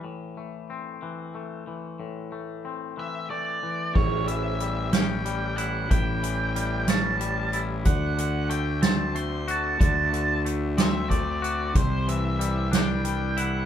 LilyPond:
<<
  \new Staff \with { instrumentName = "Lead electric guitar" } { \time 6/8 \key a \dorian \tempo 4. = 62 r2. | r4. e''8 d''4 | cis''8 e''4 g''4 fis''8 | g''4. a''4 r8 |
fis''8 fis''8 g''8 a''8 c'''8 a''8 | a''4 r8 e''8 d''4 | c''8 e''4 g''4 fis''8 | }
  \new Staff \with { instrumentName = "Clean electric guitar" } { \clef bass \time 6/8 \key a \dorian a,8 a8 c'8 e8 a8 e8 | a,8 a8 c'8 e8 a8 e8 | a,8 e8 g8 cis'8 g8 e'8 | a,8 e8 g8 cis'8 g8 e'8 |
d8 d8 a8 c'8 a8 fis'8 | d8 d8 a8 c'8 a8 fis'8 | c8 e8 g8 d'8 g8 e'8 | }
  \new Staff \with { instrumentName = "Fingered electric bass" } { \clef bass \time 6/8 \key a \dorian r2. | r2. | a,,2. | a,,2. |
d,2. | d,2. | c,2. | }
  \new DrumStaff \with { instrumentName = "Drums" } \drummode { \time 6/8 r4. r4. | r4. r4. | <cymc bd>8 hh8 hh8 <hh sn>8 hh8 hh8 | <hh bd>8 hh8 hh8 <hh sn>8 hh8 hh8 |
<hh bd>8 hh8 hh8 <hh sn>8 hh8 hh8 | <hh bd>8 hh8 hh8 <hh sn>8 <hh bd>8 hh8 | <hh bd>8 hh8 hh8 <hh sn>8 hh8 hh8 | }
>>